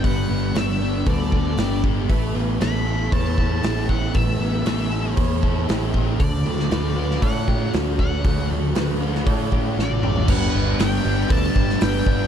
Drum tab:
CC |----------------|----------------|----------------|----------------|
HH |o---o---o---o---|o---o---o---o---|o---o---o---o---|o---o---o---o---|
SD |----o-------o---|----o-------o---|----o-------o---|---oo--o----o---|
T1 |----------------|----------------|----------------|----------------|
T2 |----------------|----------------|----------------|----------------|
FT |----------------|----------------|----------------|----------------|
BD |o-------o-o---o-|o-------o-o---o-|o-------o-o---o-|o-------o-o---o-|

CC |----------------|x---------------|
HH |o---o---o-------|----o---o---o---|
SD |----o--o----o---|----o------oo---|
T1 |-------------o--|----------------|
T2 |--------------o-|----------------|
FT |---------------o|----------------|
BD |o-------o-o-----|o-------o-o---o-|